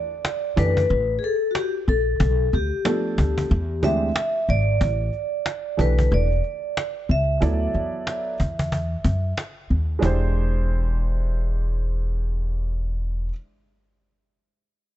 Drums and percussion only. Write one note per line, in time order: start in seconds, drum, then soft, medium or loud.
0.25 cajon slap medium
0.57 cajon bass medium
0.77 cajon bass medium
0.89 cajon slap soft
1.23 cajon slap soft
1.55 cajon slap medium
1.88 cajon slap soft
2.20 cajon bass medium
2.52 cajon slap soft
2.85 cajon slap loud
3.18 cajon bass medium
3.38 cajon bass medium
3.50 cajon slap soft
3.83 cajon bass medium
4.16 cajon slap loud
4.48 cajon slap soft
4.81 cajon bass loud
5.13 cajon slap soft
5.46 cajon slap loud
5.79 cajon bass medium
5.99 cajon bass medium
6.11 cajon slap soft
6.44 cajon slap soft
6.77 cajon slap medium
7.10 cajon slap soft
7.42 cajon bass medium
7.74 cajon slap soft
8.07 cajon slap medium
8.40 cajon bass medium
8.59 cajon bass medium
8.72 cajon bass medium
9.04 cajon bass medium
9.37 cajon slap medium
9.70 cajon slap soft
10.02 cajon bass medium